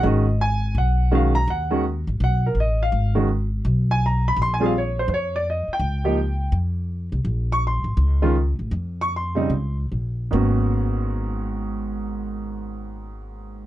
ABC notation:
X:1
M:4/4
L:1/8
Q:"Swing" 1/4=166
K:G#dor
V:1 name="Grand piano"
d2 g2 f2 e a | f2 z2 f A d e- | e z4 g a b | (3^b g e c ^B [Bc] =d ^d =g- |
=g4 z4 | z c' ^b3 z3 | z c' ^b3 z3 | z8 |
z8 |]
V:2 name="Grand piano"
[D,G,CF] z4 z [D,G,CF] z | z [D,G,CF] z6 | z [D,G,CF] z6 | z [=G,^B,E^G] z6 |
z [E,A,D=G] z6 | z4 z [D,G,CE] z2 | z3 [C,=G,^B,D] z4 | [G,,D,A,B,CF]8- |
[G,,D,A,B,CF]8 |]
V:3 name="Upright bass" clef=bass
G,,,4 B,,,4 | D,,3 =A,,, B,,,2 A,,,2 | G,,,4 B,,,4 | A,,,4 E,,3 z |
C,,4 E,,3 ^B,,, | A,,,3 =A,,, C,,3 A,,, | E,,4 C,,2 A,,,2 | G,,,8- |
G,,,8 |]